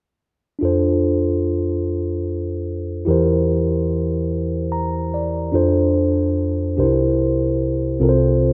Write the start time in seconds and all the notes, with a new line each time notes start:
0.59 F2 D4 F4 A4
0.65 C5
3.05 E2 E3 E4 G4 A#4
3.11 C5
4.72 A#5
5.14 D5
5.52 F2 D4 F4 A4 C5
6.77 C2 C3 D4 G4 A#4 C5
6.83 E4
8.00 C2 C3 C4 F4 A4 A#4
8.09 C5